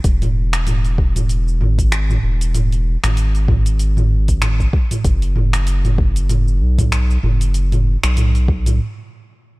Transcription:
0.04 1.62 E1 medium
0.04 kick loud
0.04 open hi-hat medium
0.04 shaker medium
0.22 mid tom medium
0.22 open hi-hat soft
0.22 shaker soft
0.53 finger snap medium
0.53 open hi-hat soft
0.53 shaker medium
0.67 mid tom medium
0.67 open hi-hat medium
0.67 shaker medium
0.85 open hi-hat soft
0.85 shaker soft
0.98 kick medium
1.16 mid tom medium
1.16 open hi-hat soft
1.16 shaker medium
1.29 open hi-hat soft
1.29 shaker medium
1.48 shaker soft
1.61 2.18 G#1 loud
1.61 mid tom medium
1.79 kick medium
1.79 open hi-hat soft
1.79 shaker medium
1.92 finger snap medium
1.92 open hi-hat medium
1.92 shaker medium
2.10 mid tom medium
2.10 shaker soft
2.23 2.97 E1 medium
2.41 open hi-hat soft
2.41 shaker medium
2.54 mid tom medium
2.54 open hi-hat medium
2.54 shaker medium
2.72 open hi-hat soft
2.72 shaker soft
3.04 4.68 G#1 medium
3.04 finger snap medium
3.04 mid tom medium
3.04 open hi-hat soft
3.04 shaker medium
3.17 open hi-hat medium
3.17 shaker medium
3.35 open hi-hat soft
3.35 shaker soft
3.48 kick medium
3.48 mid tom medium
3.66 open hi-hat soft
3.66 shaker medium
3.79 open hi-hat soft
3.79 shaker soft
3.97 mid tom medium
3.97 shaker soft
4.28 kick medium
4.28 open hi-hat soft
4.28 shaker medium
4.42 finger snap medium
4.42 mid tom medium
4.42 open hi-hat medium
4.42 shaker soft
4.60 kick medium
4.60 shaker soft
4.73 kick loud
4.91 mid tom medium
4.91 open hi-hat soft
4.91 shaker medium
5.04 6.62 F#1 loud
5.04 kick loud
5.04 open hi-hat medium
5.04 shaker medium
5.22 open hi-hat soft
5.22 shaker soft
5.36 mid tom medium
5.53 finger snap medium
5.53 open hi-hat soft
5.53 shaker medium
5.67 open hi-hat medium
5.67 shaker medium
5.85 mid tom medium
5.85 open hi-hat soft
5.85 shaker soft
5.98 kick medium
6.16 open hi-hat soft
6.16 shaker medium
6.29 mid tom medium
6.29 open hi-hat medium
6.29 shaker medium
6.48 shaker soft
6.61 7.18 B1 loud
6.79 kick medium
6.79 mid tom medium
6.79 open hi-hat soft
6.79 shaker medium
6.92 finger snap medium
6.92 open hi-hat medium
6.92 shaker medium
7.10 shaker soft
7.23 7.97 F#1 medium
7.23 mid tom medium
7.41 open hi-hat soft
7.41 shaker medium
7.54 open hi-hat medium
7.54 shaker medium
7.72 mid tom medium
7.72 open hi-hat soft
7.72 shaker soft
8.03 8.80 B1 medium
8.03 finger snap medium
8.03 open hi-hat soft
8.03 shaker medium
8.17 mid tom medium
8.17 open hi-hat medium
8.17 shaker medium
8.35 open hi-hat soft
8.35 shaker soft
8.48 kick loud
8.66 mid tom medium
8.66 open hi-hat soft
8.66 shaker medium

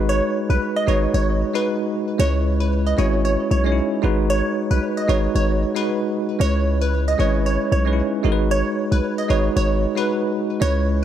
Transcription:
0.00 0.21 G#1 loud
0.00 0.78 G#3 loud
0.00 0.78 D#4 medium
0.00 0.79 F#4 medium
0.00 0.79 B4 loud
0.09 0.21 C#5 loud
0.49 0.58 B1 loud
0.49 0.60 B4 medium
0.76 0.86 D#5 medium
0.86 1.07 G#1 medium
0.86 1.47 G#3 medium
0.86 1.48 D#4 medium
0.86 1.48 F#4 medium
0.86 1.48 B4 medium
0.86 1.00 C#5 medium
1.14 1.44 G#1 loud
1.14 1.26 C#5 medium
1.53 2.13 G#3 medium
1.53 2.13 D#4 medium
1.53 2.14 F#4 medium
1.53 1.65 B4 medium
1.53 2.14 B4 medium
2.18 2.94 C#2 loud
2.18 2.91 G#3 medium
2.18 2.91 C#4 medium
2.18 2.92 E4 medium
2.18 2.92 B4 medium
2.18 2.32 C#5 loud
2.60 2.70 B4 medium
2.87 2.96 D#5 medium
2.97 3.37 G#1 loud
2.97 3.58 G#3 medium
2.97 3.58 C#4 medium
2.97 3.59 E4 medium
2.97 3.59 F#4 medium
2.97 3.11 C#5 medium
3.25 3.37 C#5 medium
3.51 3.81 B1 loud
3.51 3.63 C#5 medium
3.64 4.01 G#3 medium
3.64 4.03 C#4 medium
3.64 3.71 D#4 medium
3.64 4.04 C#5 medium
3.72 4.07 E4 medium
4.02 4.42 G#1 loud
4.02 4.99 G#3 loud
4.02 4.99 D#4 medium
4.02 5.00 F#4 medium
4.02 5.00 B4 loud
4.30 4.42 C#5 loud
4.70 4.79 B1 medium
4.70 4.81 B4 medium
4.97 5.07 D#5 medium
5.07 5.28 G#1 medium
5.07 5.68 G#3 medium
5.07 5.69 D#4 medium
5.07 5.69 F#4 medium
5.07 5.70 B4 medium
5.07 5.21 C#5 medium
5.35 5.65 G#1 loud
5.35 5.48 C#5 medium
5.75 6.34 G#3 medium
5.75 6.34 D#4 medium
5.75 6.35 F#4 medium
5.75 5.86 B4 medium
5.75 6.35 B4 medium
6.39 7.15 C#2 loud
6.39 7.12 G#3 medium
6.39 7.12 C#4 medium
6.39 7.13 E4 medium
6.39 7.13 B4 medium
6.39 6.53 C#5 loud
6.81 6.91 B4 medium
7.08 7.18 D#5 medium
7.18 7.58 G#1 medium
7.18 7.79 G#3 medium
7.18 7.79 C#4 medium
7.18 7.80 E4 medium
7.18 7.80 B4 medium
7.18 7.32 C#5 medium
7.46 7.58 C#5 medium
7.72 8.02 B1 loud
7.72 7.84 C#5 medium
7.85 8.22 G#3 medium
7.85 8.24 C#4 medium
7.85 7.92 D#4 medium
7.85 8.25 B4 medium
7.93 8.28 E4 medium
8.23 8.63 G#1 loud
8.23 9.20 G#3 loud
8.23 9.20 D#4 medium
8.23 9.21 F#4 medium
8.23 8.32 A#4 medium
8.32 9.24 B4 loud
8.51 8.63 C#5 loud
8.91 9.00 B1 medium
8.91 9.02 B4 medium
9.18 9.28 D#5 medium
9.28 9.49 G#1 medium
9.28 9.89 G#3 medium
9.28 9.90 D#4 medium
9.28 9.90 F#4 medium
9.28 9.90 B4 medium
9.28 9.42 C#5 medium
9.56 9.86 G#1 loud
9.56 9.69 C#5 medium
9.96 10.55 G#3 medium
9.96 10.55 D#4 medium
9.96 10.56 F#4 medium
9.96 10.07 B4 medium
9.96 10.56 B4 medium
10.60 11.04 C#2 loud
10.60 11.04 G#3 medium
10.60 11.04 C#4 medium
10.60 11.04 E4 medium
10.60 11.04 B4 medium
10.60 10.74 C#5 loud

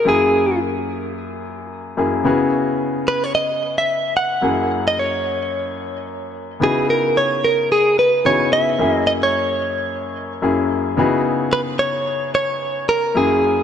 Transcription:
0.05 1.93 F#2 medium
0.05 1.93 A#3 medium
0.05 1.93 C#4 medium
0.05 1.94 E4 medium
0.05 1.94 G#4 medium
0.05 0.58 G#4 medium
1.97 2.25 F#2 medium
1.97 2.25 A#3 medium
1.97 2.23 C#4 medium
1.97 2.24 E4 medium
1.97 2.25 G#4 medium
2.24 4.38 C#3 medium
2.24 4.39 B3 medium
2.24 4.39 C#4 medium
2.24 4.39 E4 medium
2.24 4.39 F#4 medium
2.24 4.40 G#4 medium
3.08 3.24 B4 medium
3.24 3.34 C#5 medium
3.35 3.78 D#5 loud
3.78 4.13 E5 loud
4.17 4.87 F#5 loud
4.42 6.56 F#2 medium
4.42 6.57 A#3 medium
4.42 6.57 C#4 medium
4.42 6.57 E4 medium
4.42 6.58 G#4 medium
4.88 4.98 D#5 medium
4.99 6.31 C#5 medium
6.60 8.21 C#3 medium
6.60 8.21 B3 medium
6.60 8.21 D#4 medium
6.60 8.22 E4 medium
6.60 8.22 F#4 medium
6.60 8.22 G#4 medium
6.60 6.90 G#4 medium
6.90 7.17 A#4 medium
7.17 7.45 C#5 medium
7.44 7.71 A#4 medium
7.72 7.96 G#4 loud
7.99 8.24 B4 medium
8.25 8.79 C#3 medium
8.25 8.79 B3 medium
8.25 8.79 D#4 soft
8.25 8.79 E4 soft
8.25 8.80 F#4 medium
8.25 8.79 G#4 medium
8.25 8.51 C#5 loud
8.53 8.94 E5 loud
8.78 10.39 F#2 medium
8.78 10.40 A#3 medium
8.78 10.40 C#4 medium
8.78 10.40 E4 medium
8.78 10.40 G#4 medium
8.94 9.07 D#5 loud
9.07 9.12 D#5 loud
9.23 10.32 C#5 medium
10.42 10.97 F#2 medium
10.42 10.97 A#3 medium
10.42 10.97 C#4 medium
10.42 10.97 E4 medium
10.42 10.98 G#4 medium
10.97 13.11 C#3 medium
10.97 13.12 B3 medium
10.97 13.12 D#4 medium
10.97 13.12 E4 medium
10.97 13.12 F#4 medium
10.97 13.12 G#4 medium
11.53 11.60 B4 loud
11.79 12.30 C#5 loud
12.35 12.88 C#5 loud
12.89 13.17 A#4 loud
13.15 13.63 F#2 medium
13.15 13.63 A#3 medium
13.15 13.63 C#4 medium
13.15 13.63 E4 medium
13.15 13.63 G#4 medium

